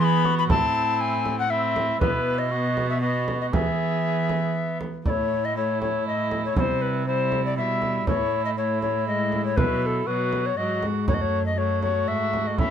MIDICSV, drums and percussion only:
0, 0, Header, 1, 2, 480
1, 0, Start_track
1, 0, Tempo, 505902
1, 477, Time_signature, 3, 2, 24, 8
1, 5280, Tempo, 501253
1, 12116, End_track
2, 0, Start_track
2, 0, Title_t, "Frame drum"
2, 234, Note_on_c, 9, 64, 49
2, 328, Note_off_c, 9, 64, 0
2, 472, Note_on_c, 9, 64, 81
2, 567, Note_off_c, 9, 64, 0
2, 1192, Note_on_c, 9, 64, 48
2, 1287, Note_off_c, 9, 64, 0
2, 1673, Note_on_c, 9, 64, 51
2, 1768, Note_off_c, 9, 64, 0
2, 1910, Note_on_c, 9, 64, 80
2, 2005, Note_off_c, 9, 64, 0
2, 2629, Note_on_c, 9, 64, 47
2, 2724, Note_off_c, 9, 64, 0
2, 3112, Note_on_c, 9, 64, 51
2, 3207, Note_off_c, 9, 64, 0
2, 3352, Note_on_c, 9, 64, 83
2, 3447, Note_off_c, 9, 64, 0
2, 4075, Note_on_c, 9, 64, 47
2, 4170, Note_off_c, 9, 64, 0
2, 4561, Note_on_c, 9, 64, 45
2, 4656, Note_off_c, 9, 64, 0
2, 4797, Note_on_c, 9, 64, 72
2, 4892, Note_off_c, 9, 64, 0
2, 5522, Note_on_c, 9, 64, 46
2, 5618, Note_off_c, 9, 64, 0
2, 5998, Note_on_c, 9, 64, 46
2, 6094, Note_off_c, 9, 64, 0
2, 6238, Note_on_c, 9, 64, 74
2, 6333, Note_off_c, 9, 64, 0
2, 6961, Note_on_c, 9, 64, 46
2, 7057, Note_off_c, 9, 64, 0
2, 7439, Note_on_c, 9, 64, 44
2, 7534, Note_off_c, 9, 64, 0
2, 7681, Note_on_c, 9, 64, 74
2, 7777, Note_off_c, 9, 64, 0
2, 8401, Note_on_c, 9, 64, 39
2, 8497, Note_off_c, 9, 64, 0
2, 8880, Note_on_c, 9, 64, 45
2, 8976, Note_off_c, 9, 64, 0
2, 9120, Note_on_c, 9, 64, 82
2, 9216, Note_off_c, 9, 64, 0
2, 9839, Note_on_c, 9, 64, 44
2, 9935, Note_off_c, 9, 64, 0
2, 10318, Note_on_c, 9, 64, 47
2, 10414, Note_off_c, 9, 64, 0
2, 10559, Note_on_c, 9, 64, 76
2, 10655, Note_off_c, 9, 64, 0
2, 11276, Note_on_c, 9, 64, 45
2, 11372, Note_off_c, 9, 64, 0
2, 11763, Note_on_c, 9, 64, 44
2, 11859, Note_off_c, 9, 64, 0
2, 12002, Note_on_c, 9, 64, 73
2, 12098, Note_off_c, 9, 64, 0
2, 12116, End_track
0, 0, End_of_file